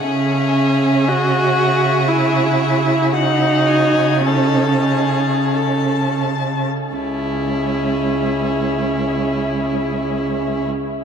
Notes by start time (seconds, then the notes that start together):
Already playing: G#4
0.06 C#3 C#4 E5
1.07 F#4 D#5
1.58 E5
2.08 E4
3.12 D#4 F#4 F#5
3.67 G#5
4.26 C#4 A4 A5
4.88 G#4
5.53 A4 A5
6.94 C#2 C#4 E4 G#4